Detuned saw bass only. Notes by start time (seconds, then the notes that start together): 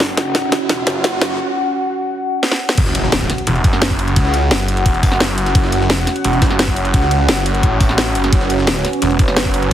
0.00 F#1
0.69 E1
0.87 F#1
2.78 F#1
3.47 E1
3.64 F#1
4.16 C#2
4.51 F#1
4.86 E1
5.03 F#1
5.55 F#1
6.24 E1
6.42 F#1
6.94 C#2
7.29 F#1
7.63 A1
8.15 F#1
8.33 F#1
9.02 E1
9.19 F#1